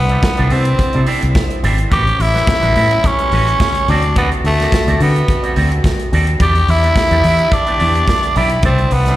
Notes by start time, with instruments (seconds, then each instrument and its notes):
Already playing: fingered electric bass C2, french horn section C3 A3 D4 E4, tenor saxophone B3
0.09 clean electric guitar C4 E4 A4 D5, closed hi-hat
0.23 muted clean electric guitar stroke, kick, snare, closed hi-hat
0.37 fingered electric bass C2, clean electric guitar C4 E4 A4 D5, closed hi-hat
0.50 fingered electric bass C3, clean electric guitar C4 E4 A4 D5, tenor saxophone C4, open hi-hat
0.65 muted clean electric guitar stroke, closed hi-hat
0.79 muted clean electric guitar stroke, muted fingered electric bass stroke, kick, closed hi-hat
0.93 fingered electric bass C3, clean electric guitar C4 E4 A4 D5, closed hi-hat
1.07 clean electric guitar C4 E4 A4 D5, open hi-hat
1.22 fingered electric bass C2, muted clean electric guitar stroke, closed hi-hat
1.35 kick, snare, closed hi-hat
1.50 muted clean electric guitar stroke, closed hi-hat
1.63 fingered electric bass G#1, clean electric guitar C4 E4 A4 D5, open hi-hat
1.77 muted clean electric guitar stroke, closed hi-hat
1.90 fingered electric bass A1, clean electric guitar G3 C#4 F#4 B4, french horn section G3 C#4, tenor saxophone G4, kick, closed hi-hat
2.05 muted clean electric guitar stroke, closed hi-hat
2.19 fingered electric bass A1, tenor saxophone E4, muted clean electric guitar stroke, open hi-hat
2.34 clean electric guitar G3 C#4 F#4 B4, snare, closed hi-hat
2.47 muted clean electric guitar stroke, kick, snare, closed hi-hat
2.62 fingered electric bass A1, clean electric guitar G3 C#4 F#4 B4, closed hi-hat
2.75 fingered electric bass A2, clean electric guitar G3 C#4 F#4 B4, open hi-hat
2.91 muted clean electric guitar stroke, closed hi-hat
3.04 tenor saxophone C#4, muted clean electric guitar stroke, kick, closed hi-hat
3.18 clean electric guitar G3 C#4 F#4 B4, closed hi-hat
3.32 fingered electric bass A1, clean electric guitar G3 C#4 F#4 B4, open hi-hat
3.48 muted clean electric guitar stroke, closed hi-hat
3.60 kick, snare, closed hi-hat
3.75 muted clean electric guitar stroke, closed hi-hat
3.88 fingered electric bass D2, french horn section C3 D3 F#4, clean electric guitar C4 F#4 A4 D5, tenor saxophone D4, open hi-hat
4.03 closed hi-hat
4.16 tenor saxophone B3, clean electric guitar C4 F#4 A4 D5, kick, closed hi-hat
4.32 muted clean electric guitar stroke, closed hi-hat
4.44 fingered electric bass D2, tenor saxophone A3, muted clean electric guitar stroke, open hi-hat
4.60 clean electric guitar C4 F#4 A4 D5, snare, closed hi-hat
4.72 muted clean electric guitar stroke, kick, snare, closed hi-hat
4.87 fingered electric bass D2, clean electric guitar C4 F#4 A4 D5, closed hi-hat
5.00 fingered electric bass D3, tenor saxophone B3, clean electric guitar C4 F#4 A4 D5, open hi-hat
5.16 muted clean electric guitar stroke, closed hi-hat
5.28 muted clean electric guitar stroke, kick, closed hi-hat
5.43 clean electric guitar C4 F#4 A4 D5, closed hi-hat
5.56 fingered electric bass D2, clean electric guitar C4 F#4 A4 D5, open hi-hat
5.71 muted clean electric guitar stroke, closed hi-hat
5.84 kick, snare, closed hi-hat
5.99 muted clean electric guitar stroke, closed hi-hat
6.12 fingered electric bass D#2, clean electric guitar C4 F#4 A4 D5, open hi-hat
6.27 muted clean electric guitar stroke, closed hi-hat
6.40 fingered electric bass E2, french horn section E3 B3 D4 G4, clean electric guitar B3 E4 G4 D5, tenor saxophone G4, kick, closed hi-hat
6.54 muted clean electric guitar stroke, closed hi-hat
6.68 fingered electric bass E2, tenor saxophone E4, muted clean electric guitar stroke, open hi-hat
6.83 clean electric guitar B3 E4 G4 D5, closed hi-hat
6.96 kick, snare, closed hi-hat
7.11 fingered electric bass E2, clean electric guitar B3 E4 G4 D5, closed hi-hat
7.24 fingered electric bass E3, clean electric guitar B3 E4 G4 D5, open hi-hat
7.39 muted clean electric guitar stroke, closed hi-hat
7.52 tenor saxophone D4, muted clean electric guitar stroke, kick, closed hi-hat
7.66 clean electric guitar B3 E4 G4 D5, closed hi-hat
7.79 fingered electric bass E2, clean electric guitar B3 E4 G4 D5, open hi-hat
7.95 muted clean electric guitar stroke, closed hi-hat
8.08 kick, snare, closed hi-hat
8.22 muted clean electric guitar stroke, closed hi-hat
8.36 fingered electric bass B1, clean electric guitar B3 E4 G4 D5, tenor saxophone E4, open hi-hat
8.49 muted clean electric guitar stroke, closed hi-hat
8.63 fingered electric bass C2, french horn section C3 A3 E4, clean electric guitar C4 E4 A4 D5, tenor saxophone C4, kick, closed hi-hat
8.78 muted clean electric guitar stroke, closed hi-hat
8.91 fingered electric bass C2, tenor saxophone B3, muted clean electric guitar stroke, open hi-hat
9.06 clean electric guitar C4 E4 A4 D5, snare, closed hi-hat